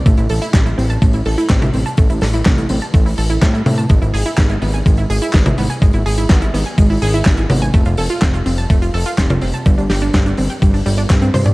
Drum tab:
HH |xxoxxxoxxxoxxxox|xxoxxxoxxooxxxox|xxoxxxoxxxoxxxox|xxoxxxoxxooxxxox|
CP |----x-------x---|----x-------x---|----x-------x---|----x-------x---|
SD |----o-------o---|--o-o-------o---|----o-------o---|----o-------o---|
T1 |-------------o--|----o---------o-|-------------o--|--------------o-|
T2 |----------------|----------------|----------------|----------------|
BD |o---o---o---o---|o---o---o---o---|o---o---o---o---|o---o---o---o---|

HH |xxoxxxoxxxoxxxox|xxoxxxoxxooxxxox|
CP |----x-------x---|----x-------x---|
SD |----o-------o---|--o-o-------o---|
T1 |-------------o--|--------------o-|
T2 |----------------|---------------o|
BD |o---o---o---o---|o---o---o---o---|